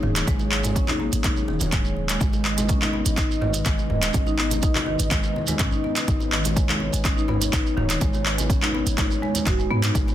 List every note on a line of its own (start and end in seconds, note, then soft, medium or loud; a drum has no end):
0.00 0.24 D#1 medium
0.00 0.10 D#3 medium
0.00 2.17 F#3 medium
0.00 2.17 A#3 medium
0.00 2.17 C#4 medium
0.00 2.17 G#4 medium
0.00 2.17 C#5 medium
0.00 mid tom medium
0.00 low conga medium
0.15 clap medium
0.15 closed hi-hat medium
0.15 muted conga medium
0.15 shekere medium
0.27 1.09 G#1 medium
0.27 0.39 G#3 medium
0.27 kick loud
0.27 closed hi-hat soft
0.27 high conga medium
0.27 shekere medium
0.39 muted conga soft
0.39 shekere soft
0.52 clap medium
0.64 0.75 G#3 medium
0.64 closed hi-hat medium
0.64 mid tom medium
0.64 muted conga soft
0.64 high conga loud
0.64 shekere medium
0.76 0.83 C#4 medium
0.76 kick loud
0.76 closed hi-hat soft
0.76 shekere medium
0.88 0.94 D#4 medium
0.88 clap medium
0.88 high conga loud
0.88 low conga medium
0.88 shekere soft
0.99 1.11 A#3 medium
0.99 muted conga soft
1.12 1.50 G#1 medium
1.12 closed hi-hat medium
1.12 shekere medium
1.24 1.31 D#4 medium
1.24 kick loud
1.24 clap medium
1.24 closed hi-hat soft
1.24 muted conga soft
1.24 high conga medium
1.24 low conga medium
1.24 shekere medium
1.36 shekere soft
1.48 1.59 D#1 medium
1.48 1.55 D#3 medium
1.48 muted conga medium
1.48 high conga medium
1.60 2.18 D#1 medium
1.60 closed hi-hat medium
1.60 low conga loud
1.60 shekere medium
1.72 1.84 G#3 medium
1.72 kick loud
1.72 clap medium
1.72 closed hi-hat soft
1.72 mid tom medium
1.72 muted conga soft
1.72 shekere medium
1.85 shekere soft
1.97 high conga soft
2.09 2.19 G#3 medium
2.09 clap medium
2.09 closed hi-hat medium
2.09 muted conga medium
2.09 shekere medium
2.20 3.03 G#1 medium
2.20 2.32 G#3 medium
2.20 9.91 G#3 medium
2.20 9.91 B3 medium
2.20 9.91 D#4 medium
2.20 9.91 B4 medium
2.20 6.04 D#5 medium
2.20 kick loud
2.20 closed hi-hat soft
2.20 high conga medium
2.20 shekere medium
2.33 muted conga medium
2.33 shekere soft
2.45 clap medium
2.57 2.68 G#3 medium
2.57 closed hi-hat medium
2.57 muted conga soft
2.57 high conga loud
2.57 shekere medium
2.69 2.76 C#4 medium
2.69 kick loud
2.69 closed hi-hat soft
2.69 shekere medium
2.81 2.88 D#4 medium
2.81 clap medium
2.81 high conga loud
2.81 low conga medium
2.81 shekere soft
2.93 3.05 B3 medium
2.93 muted conga medium
3.06 3.63 G#1 medium
3.06 closed hi-hat medium
3.06 shekere medium
3.17 3.24 D#4 medium
3.17 kick loud
3.17 clap medium
3.17 closed hi-hat soft
3.17 muted conga soft
3.17 shekere medium
3.31 shekere soft
3.41 3.48 D#3 medium
3.41 mid tom medium
3.41 muted conga soft
3.41 low conga medium
3.54 closed hi-hat medium
3.54 high conga medium
3.54 shekere medium
3.65 3.77 G#1 medium
3.65 3.77 G#3 medium
3.65 kick loud
3.65 clap medium
3.65 closed hi-hat soft
3.65 muted conga soft
3.65 shekere medium
3.78 high conga medium
3.78 shekere soft
3.90 4.11 D#1 medium
3.90 mid tom medium
3.90 low conga medium
4.02 4.13 G#3 medium
4.02 clap medium
4.02 closed hi-hat medium
4.02 muted conga medium
4.02 shekere medium
4.13 4.96 G#1 medium
4.13 4.21 C#4 medium
4.13 kick loud
4.13 closed hi-hat soft
4.13 high conga medium
4.13 shekere medium
4.27 4.33 D#4 medium
4.27 muted conga soft
4.27 shekere soft
4.39 4.50 B3 medium
4.39 clap medium
4.51 closed hi-hat medium
4.51 muted conga soft
4.51 high conga loud
4.51 shekere medium
4.62 4.70 D#4 medium
4.62 kick loud
4.62 closed hi-hat soft
4.62 shekere medium
4.75 clap medium
4.75 high conga loud
4.75 low conga medium
4.75 shekere soft
4.86 4.94 D#3 medium
4.86 muted conga soft
4.99 5.09 G#1 medium
4.99 closed hi-hat medium
4.99 shekere medium
5.10 5.22 G#1 medium
5.10 5.23 G#3 medium
5.10 kick loud
5.10 clap medium
5.10 closed hi-hat soft
5.10 muted conga soft
5.10 high conga medium
5.10 low conga loud
5.10 shekere medium
5.23 shekere soft
5.36 muted conga medium
5.36 high conga medium
5.47 5.58 G#3 medium
5.47 closed hi-hat medium
5.47 low conga loud
5.47 shekere medium
5.59 5.70 B1 medium
5.59 5.67 C#4 medium
5.59 kick loud
5.59 clap medium
5.59 closed hi-hat soft
5.59 mid tom medium
5.59 muted conga soft
5.59 shekere medium
5.71 5.79 D#4 medium
5.71 shekere soft
5.84 5.95 B3 medium
5.84 high conga medium
5.96 clap medium
5.96 closed hi-hat medium
5.96 muted conga soft
5.96 shekere medium
6.07 6.90 G#1 medium
6.07 6.15 D#4 medium
6.07 9.91 C#5 medium
6.07 kick loud
6.07 closed hi-hat soft
6.07 high conga medium
6.07 shekere medium
6.20 muted conga soft
6.20 shekere soft
6.32 6.39 D#3 medium
6.32 clap medium
6.44 closed hi-hat medium
6.44 muted conga soft
6.44 high conga loud
6.44 shekere medium
6.56 6.68 G#3 medium
6.56 kick loud
6.56 closed hi-hat soft
6.56 shekere medium
6.69 clap medium
6.69 high conga loud
6.69 low conga medium
6.69 shekere soft
6.80 muted conga soft
6.93 7.50 G#1 medium
6.93 7.04 G#3 medium
6.93 closed hi-hat medium
6.93 shekere medium
7.04 7.11 C#4 medium
7.04 kick loud
7.04 clap medium
7.04 closed hi-hat soft
7.04 muted conga soft
7.04 shekere medium
7.17 7.23 D#4 medium
7.17 shekere soft
7.28 7.40 B3 medium
7.28 mid tom medium
7.28 muted conga soft
7.28 low conga medium
7.41 closed hi-hat medium
7.41 high conga medium
7.41 shekere medium
7.53 7.64 G#1 medium
7.53 7.60 D#4 medium
7.53 kick loud
7.53 clap medium
7.53 closed hi-hat soft
7.53 shekere medium
7.66 high conga medium
7.66 shekere soft
7.77 7.98 D#1 loud
7.77 7.84 D#3 medium
7.77 mid tom medium
7.77 low conga medium
7.90 clap medium
7.90 closed hi-hat medium
7.90 muted conga medium
7.90 shekere medium
8.01 8.83 G#1 medium
8.01 8.13 G#3 medium
8.01 kick loud
8.01 closed hi-hat soft
8.01 high conga medium
8.01 shekere medium
8.13 muted conga medium
8.13 shekere soft
8.26 clap medium
8.38 8.49 G#3 medium
8.38 closed hi-hat soft
8.38 muted conga soft
8.38 high conga loud
8.38 shekere medium
8.49 8.57 C#4 medium
8.49 kick loud
8.49 closed hi-hat soft
8.49 shekere medium
8.62 8.69 D#4 medium
8.62 clap medium
8.62 high conga medium
8.62 low conga medium
8.62 shekere soft
8.74 8.86 B3 medium
8.74 muted conga soft
8.86 8.96 G#1 medium
8.86 closed hi-hat medium
8.86 shekere medium
8.98 9.09 G#1 medium
8.98 9.05 D#4 medium
8.98 kick loud
8.98 clap medium
8.98 closed hi-hat soft
8.98 muted conga soft
8.98 high conga medium
8.98 low conga medium
8.98 shekere medium
9.11 shekere soft
9.22 9.29 G#3 loud
9.22 muted conga soft
9.22 high conga medium
9.35 closed hi-hat medium
9.35 low conga medium
9.35 shekere medium
9.46 9.67 D#1 loud
9.46 9.59 F#4 medium
9.46 kick loud
9.46 clap medium
9.46 closed hi-hat soft
9.46 mid tom medium
9.46 muted conga soft
9.46 shekere medium
9.59 9.65 G#3 medium
9.59 shekere soft
9.71 9.91 G#2 medium
9.71 9.83 B3 loud
9.71 high conga medium
9.83 9.94 D#4 medium
9.83 clap loud
9.83 closed hi-hat medium
9.83 muted conga medium
9.83 shekere medium
9.95 10.15 G#1 medium
9.95 10.15 F#3 medium
9.95 10.06 G#3 medium
9.95 10.15 A#3 medium
9.95 10.15 C#4 medium
9.95 10.15 A#4 medium
9.95 10.15 C#5 medium
9.95 kick loud
9.95 closed hi-hat soft
9.95 high conga medium
9.95 shekere medium
10.08 muted conga soft
10.08 shekere soft